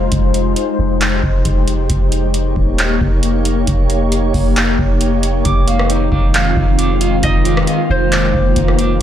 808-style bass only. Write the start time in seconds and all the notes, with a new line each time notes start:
0.12 F1
0.79 F1
1.23 F1
1.45 F1
1.90 F1
2.56 D#1
3.01 F1
3.67 F1
4.34 F1
4.79 F1
5.45 F1
6.12 F1
6.57 F1
7.23 F1
7.90 F1
8.34 F1
8.56 F1